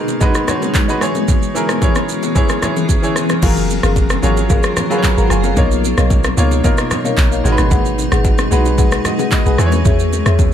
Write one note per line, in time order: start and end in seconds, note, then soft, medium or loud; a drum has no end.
0.00 0.20 G#3 medium
0.00 0.99 G#3 medium
0.00 0.99 B3 medium
0.00 0.21 D#4 medium
0.00 0.97 D#4 medium
0.00 0.22 F#4 medium
0.00 0.99 F#4 medium
0.00 1.02 G#4 medium
0.00 0.15 A#4 medium
0.00 0.22 B4 loud
0.00 1.03 A#5 medium
0.08 high bongo medium
0.08 shaker medium
0.20 0.42 G#3 medium
0.20 0.43 D#4 medium
0.20 0.43 F#4 medium
0.20 0.43 B4 loud
0.20 kick loud
0.20 low conga medium
0.20 shaker medium
0.34 cross-stick medium
0.34 shaker medium
0.47 0.80 G#3 medium
0.47 0.80 D#4 medium
0.47 0.81 F#4 medium
0.47 0.81 C#5 medium
0.47 cross-stick medium
0.47 high bongo medium
0.47 low conga medium
0.47 shaker medium
0.62 low bongo medium
0.62 shaker medium
0.74 kick medium
0.74 clap loud
0.74 high bongo medium
0.74 shaker medium
0.88 1.01 G#3 medium
0.88 1.01 D#4 medium
0.88 1.02 F#4 medium
0.88 1.02 B4 medium
0.88 shaker soft
1.01 1.44 E3 medium
1.01 3.40 E3 medium
1.01 3.40 B3 medium
1.01 3.40 C#4 medium
1.01 1.45 E4 medium
1.01 3.40 G#4 medium
1.01 1.45 G#4 medium
1.01 1.45 C#5 loud
1.01 cross-stick medium
1.01 shaker medium
1.15 low bongo medium
1.15 shaker medium
1.28 kick loud
1.28 low conga medium
1.28 shaker medium
1.43 shaker soft
1.54 1.76 E3 medium
1.54 1.77 E4 medium
1.54 1.77 G#4 medium
1.54 1.77 A#4 medium
1.54 shaker medium
1.69 cross-stick loud
1.69 shaker medium
1.81 2.25 E3 medium
1.81 2.25 E4 medium
1.81 2.25 G#4 medium
1.81 2.26 C#5 medium
1.81 kick medium
1.81 high bongo medium
1.81 shaker medium
1.95 cross-stick medium
1.95 low bongo medium
1.95 shaker medium
2.09 shaker medium
2.23 high bongo medium
2.23 shaker medium
2.35 2.57 E3 medium
2.35 2.57 E4 medium
2.35 2.57 G#4 medium
2.35 2.58 C#5 loud
2.35 kick loud
2.35 low conga medium
2.35 shaker medium
2.49 cross-stick medium
2.49 shaker medium
2.62 2.94 E3 medium
2.62 2.95 E4 medium
2.62 2.95 G#4 medium
2.62 2.95 C#5 medium
2.62 cross-stick medium
2.62 high bongo medium
2.62 low conga medium
2.62 shaker medium
2.77 low bongo medium
2.77 shaker medium
2.89 kick medium
2.89 high bongo medium
2.89 shaker medium
3.02 3.35 E3 medium
3.02 3.35 E4 medium
3.02 3.35 G#4 medium
3.02 3.35 C#5 medium
3.02 shaker soft
3.16 cross-stick medium
3.16 shaker medium
3.29 cross-stick medium
3.29 low bongo medium
3.29 shaker medium
3.42 3.80 F#1 loud
3.42 4.07 F#3 medium
3.42 5.55 F#3 medium
3.42 5.55 F4 medium
3.42 4.07 F4 medium
3.42 3.80 G#4 loud
3.42 5.55 G#4 medium
3.42 4.08 G#4 medium
3.42 5.55 A#4 medium
3.42 3.80 A#4 medium
3.42 4.08 A#4 medium
3.42 3.80 F5 loud
3.42 kick loud
3.42 crash loud
3.42 low conga medium
3.42 shaker medium
3.57 shaker medium
3.70 low bongo medium
3.70 shaker medium
3.83 4.20 F#1 loud
3.83 4.20 G#4 medium
3.83 4.20 A#4 medium
3.83 4.20 F5 medium
3.83 cross-stick loud
3.83 shaker medium
3.96 kick loud
3.96 high bongo medium
3.96 shaker medium
4.10 cross-stick loud
4.10 low bongo medium
4.10 shaker medium
4.22 4.73 G#1 medium
4.22 4.76 F#3 medium
4.22 4.76 F4 medium
4.22 4.47 G#4 medium
4.22 4.77 G#4 medium
4.22 4.48 A#4 medium
4.22 4.77 C#5 loud
4.22 4.48 F5 medium
4.22 shaker medium
4.37 high bongo medium
4.37 shaker medium
4.50 4.62 G#4 medium
4.50 4.62 A#4 medium
4.50 4.62 F5 loud
4.50 kick loud
4.50 low conga medium
4.50 shaker medium
4.63 cross-stick loud
4.63 shaker medium
4.77 cross-stick loud
4.77 low conga medium
4.77 shaker medium
4.90 5.44 F#3 medium
4.90 5.44 F4 medium
4.90 5.02 G#4 medium
4.90 5.44 G#4 medium
4.90 5.02 A#4 medium
4.90 4.97 B4 medium
4.90 5.02 F5 medium
4.90 low bongo medium
4.90 shaker medium
4.98 5.07 C#5 medium
5.03 5.16 A#5 medium
5.03 5.17 C#6 medium
5.03 kick medium
5.03 clap loud
5.03 high bongo medium
5.03 shaker medium
5.17 5.29 G#1 medium
5.17 5.28 G#4 medium
5.17 5.28 A#4 medium
5.17 5.29 F5 medium
5.17 5.30 F#5 medium
5.17 5.30 A#5 medium
5.17 shaker medium
5.30 5.55 F#1 loud
5.30 5.43 F5 medium
5.30 5.43 G#5 medium
5.30 cross-stick medium
5.30 shaker medium
5.44 5.57 C#5 medium
5.44 5.70 F5 medium
5.44 low bongo medium
5.44 shaker medium
5.56 5.94 B1 loud
5.56 6.21 B2 medium
5.56 7.42 B2 medium
5.56 7.42 A#3 medium
5.56 6.22 A#3 medium
5.56 9.55 D#4 medium
5.56 6.22 D#4 medium
5.56 6.22 F4 medium
5.56 5.94 A#4 loud
5.56 5.94 C#5 medium
5.56 6.22 C#5 loud
5.56 5.94 D#5 medium
5.56 5.94 F5 loud
5.56 kick loud
5.56 low conga medium
5.56 shaker medium
5.71 shaker medium
5.84 low bongo medium
5.84 shaker medium
5.97 6.34 B1 loud
5.97 6.34 A#4 medium
5.97 6.34 C#5 medium
5.97 6.34 D#5 medium
5.97 6.34 F5 medium
5.97 cross-stick loud
5.97 shaker medium
6.10 kick loud
6.10 high bongo medium
6.10 shaker medium
6.24 cross-stick loud
6.24 low bongo medium
6.24 shaker medium
6.37 6.62 C#2 loud
6.37 6.59 B2 medium
6.37 6.59 A#3 medium
6.37 6.59 D#4 medium
6.37 6.59 F4 medium
6.37 6.62 A#4 medium
6.37 6.62 C#5 medium
6.37 6.60 C#5 medium
6.37 6.62 D#5 medium
6.37 6.62 F5 medium
6.37 shaker loud
6.51 high bongo medium
6.51 shaker medium
6.64 7.44 B2 medium
6.64 7.44 A#3 medium
6.64 7.43 D#4 medium
6.64 7.45 F4 medium
6.64 6.76 A#4 medium
6.64 7.44 A#4 loud
6.64 6.76 C#5 medium
6.64 6.76 D#5 medium
6.64 6.76 F5 loud
6.64 kick loud
6.64 low conga medium
6.64 shaker medium
6.78 cross-stick loud
6.78 shaker medium
6.91 cross-stick loud
6.91 low conga medium
6.91 shaker medium
7.04 7.16 A#4 medium
7.04 7.16 C#5 medium
7.04 7.16 D#5 medium
7.04 7.16 F5 medium
7.04 low bongo medium
7.04 shaker medium
7.17 7.42 A#1 loud
7.17 kick loud
7.17 clap loud
7.17 high bongo medium
7.17 shaker medium
7.31 7.42 A#4 medium
7.31 7.43 C#5 medium
7.31 7.43 D#5 medium
7.31 7.43 F5 medium
7.31 shaker medium
7.44 7.57 G#1 loud
7.44 8.30 G#3 medium
7.44 9.56 G#3 medium
7.44 8.30 D#4 medium
7.44 9.56 F#4 medium
7.44 8.31 F#4 medium
7.44 7.52 A#4 medium
7.44 9.56 B4 medium
7.44 shaker medium
7.52 8.34 B4 loud
7.58 7.70 G#1 medium
7.58 cross-stick medium
7.58 low bongo medium
7.58 shaker medium
7.71 8.08 G#1 loud
7.71 8.08 G#4 medium
7.71 8.08 B4 medium
7.71 8.09 F#5 loud
7.71 kick loud
7.71 low conga medium
7.71 shaker medium
7.85 shaker medium
7.98 low bongo medium
7.98 shaker medium
8.12 8.48 G#1 loud
8.12 8.48 G#4 medium
8.12 8.48 B4 medium
8.12 8.49 F#5 medium
8.12 cross-stick loud
8.12 shaker medium
8.24 kick loud
8.24 high bongo medium
8.24 shaker medium
8.38 cross-stick loud
8.38 low bongo medium
8.38 shaker medium
8.51 9.01 B1 loud
8.51 9.05 G#3 medium
8.51 9.05 D#4 medium
8.51 9.05 F#4 medium
8.51 8.76 G#4 medium
8.51 8.76 B4 medium
8.51 9.06 B4 medium
8.51 8.76 F#5 medium
8.51 shaker medium
8.65 high bongo medium
8.65 shaker medium
8.78 8.90 G#4 medium
8.78 8.90 B4 medium
8.78 8.90 F#5 loud
8.78 kick loud
8.78 low conga medium
8.78 shaker medium
8.92 cross-stick loud
8.92 shaker medium
9.05 9.31 D#5 medium
9.05 9.31 F#5 medium
9.05 cross-stick loud
9.05 low conga medium
9.05 shaker medium
9.19 9.30 G#4 medium
9.19 9.30 B4 medium
9.19 9.30 F#5 medium
9.19 low bongo medium
9.19 shaker medium
9.31 9.45 B4 medium
9.31 9.45 D#5 medium
9.31 kick medium
9.31 clap loud
9.31 high bongo medium
9.31 shaker medium
9.45 9.57 B1 medium
9.45 9.57 G#4 medium
9.45 9.58 G#4 medium
9.45 9.57 B4 medium
9.45 9.58 B4 medium
9.45 9.57 F#5 medium
9.45 shaker medium
9.58 9.83 E2 loud
9.58 10.44 E3 medium
9.58 10.54 E3 medium
9.58 10.54 B3 medium
9.58 10.54 C#4 medium
9.58 10.45 E4 medium
9.58 10.54 G#4 medium
9.58 10.45 G#4 medium
9.58 9.66 B4 medium
9.58 cross-stick medium
9.58 shaker medium
9.66 10.48 C#5 loud
9.72 low bongo medium
9.72 shaker medium
9.85 10.23 E2 loud
9.85 10.23 G#4 medium
9.85 10.23 C#5 medium
9.85 10.23 E5 loud
9.85 kick loud
9.85 low conga medium
9.85 shaker medium
9.99 shaker medium
10.13 low bongo medium
10.13 shaker medium
10.26 10.54 E2 loud
10.26 10.54 G#4 medium
10.26 10.54 C#5 medium
10.26 10.54 E5 medium
10.26 cross-stick loud
10.26 shaker medium
10.39 kick loud
10.39 high bongo medium
10.39 shaker medium